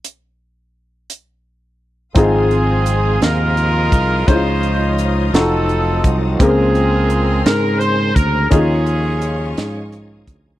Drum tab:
HH |x--x--|xxxxxx|xxxxxx|xxxxxx|
SD |------|---o--|---o--|---o--|
BD |------|o----o|o----o|o----o|

HH |xxxxxx|
SD |---o--|
BD |o----o|